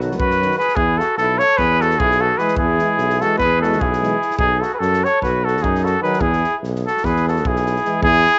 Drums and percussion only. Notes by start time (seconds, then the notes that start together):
0.01 snare
0.11 snare
0.20 kick
0.30 snare
0.42 snare
0.51 snare
0.60 snare
0.68 snare
0.77 kick
1.00 snare
1.17 snare
1.39 snare
1.58 kick, snare
1.81 snare
1.90 snare
2.00 kick
2.11 snare
2.39 snare
2.48 snare
2.56 kick
2.79 snare
2.98 snare
3.10 snare
3.21 snare
3.40 kick, snare
3.63 snare
3.72 snare
3.81 kick
3.93 snare
4.03 snare
4.21 snare
4.31 snare
4.39 kick
4.62 snare
4.82 snare
4.93 snare
5.05 snare
5.22 kick, snare
5.48 snare
5.57 snare
5.64 kick
5.75 snare
5.86 snare
6.04 snare
6.13 snare
6.21 kick
6.33 snare
6.44 snare
6.64 snare
6.75 snare
6.87 snare
6.97 snare
7.04 kick, snare
7.16 snare
7.28 snare
7.36 snare
7.45 kick
7.56 snare
7.66 snare
7.76 snare
7.85 snare
8.03 kick
8.26 snare